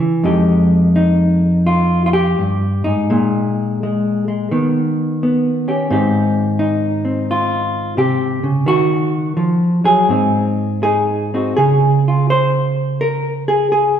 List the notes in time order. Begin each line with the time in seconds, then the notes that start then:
Already playing: G4
0.00 E3
0.24 F2 G#3 D#4 G4
0.96 D#4
1.67 F4
2.06 F4
2.13 G4
2.39 G2
2.84 G#2 D#4
3.10 A#2 G#3
3.83 G#3
4.28 G#3
4.51 D#3 B3
5.23 B3
5.68 C#4 G4
5.90 G#2 C4 D#4 G4
6.59 D#4
7.05 C4
7.31 F4
7.97 C3 G4
8.43 C#3
8.66 D#3 F#4
9.37 F3
9.84 F#3 G#4
10.09 G#2 C4 D#4
10.83 D#4 G#4
11.34 C4 D#4 F#4
11.57 C#3 G#4
12.08 F4
12.30 C5
13.01 A#4
13.48 G#4
13.72 G#4